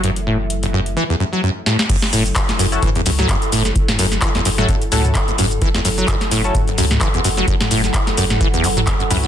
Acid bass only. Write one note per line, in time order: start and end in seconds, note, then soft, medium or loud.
0.04 0.11 F#2 medium
0.27 0.37 A2 medium
0.63 0.66 F#1 medium
0.73 0.80 F#2 loud
0.96 1.04 E3 loud
1.09 1.15 E2 loud
1.20 1.24 F#2 loud
1.33 1.41 F#3 medium
1.43 1.50 F#2 loud
1.66 1.77 A2 medium
1.89 1.97 F#2 loud
2.13 2.23 A2 medium
2.49 2.52 F#1 medium
2.59 2.66 F#2 loud
2.83 2.90 E3 loud
2.95 3.01 E2 loud
3.06 3.10 F#2 loud
3.19 3.27 F#3 medium
3.29 3.36 F#2 loud
3.52 3.63 A2 medium
3.88 3.92 F#1 medium
3.99 4.06 F#2 loud
4.22 4.29 E3 loud
4.35 4.41 E2 loud
4.45 4.50 F#2 loud
4.58 4.67 F#3 medium
4.69 4.76 F#2 loud
4.92 5.02 A2 medium
5.28 5.31 F#1 medium
5.38 5.45 F#2 loud
5.62 5.69 E3 loud
5.75 5.80 E2 loud
5.85 5.89 F#2 loud
5.98 6.06 F#3 medium
6.08 6.15 F#2 loud
6.31 6.42 A2 medium
6.68 6.71 F#1 medium
6.78 6.85 F#2 loud
7.01 7.08 E3 loud
7.14 7.20 E2 loud
7.24 7.29 F#2 loud
7.37 7.46 F#3 medium
7.48 7.55 F#2 loud
7.71 7.82 A2 medium
8.07 8.11 F#1 medium
8.17 8.25 F#2 loud
8.41 8.48 E3 loud
8.54 8.65 E2 loud
8.64 8.68 F#2 loud
8.77 8.80 F#3 medium
8.87 8.94 E2 medium
9.00 9.04 F#2 medium
9.11 9.18 F#2 loud
9.23 9.28 E2 medium